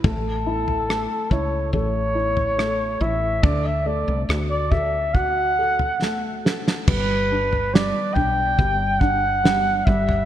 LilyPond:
<<
  \new Staff \with { instrumentName = "Flugelhorn" } { \time 4/4 \key g \major \tempo 4 = 70 a'4. cis''8 cis''4. e''8 | d''16 e''16 d''8 r16 d''16 e''8 fis''4. r8 | b'4 d''8 g''4 fis''4 e''8 | }
  \new Staff \with { instrumentName = "Felt piano" } { \time 4/4 \key g \major a8 e'8 a8 e'8 a8 e'8 a8 e'8 | d8 a8 fis'8 a'8 fis'8 a'8 a8 a'8 | g8 d'8 g8 d'8 g8 d'8 g8 g8 | }
  \new Staff \with { instrumentName = "Fretless electric bass" } { \clef bass \time 4/4 \key g \major a,,4~ a,,16 r16 cis,8 a,,4. a,,8 | d,8. c,16 d,2. | g,,4~ g,,16 r16 b,,8 g,,4. g,,8 | }
  \new DrumStaff \with { instrumentName = "Drums" } \drummode { \time 4/4 <bd tomfh>8. tomfh16 ss8 <bd tomfh>8 tomfh8. tomfh16 ss4 | <bd tomfh>4 ss8 <bd tomfh>8 <bd tomfh>8. tomfh16 sn8 sn16 sn16 | <cymc bd tomfh>8. tomfh16 sn8 tomfh8 <bd tomfh>8 bd8 sn8 bd16 tomfh16 | }
>>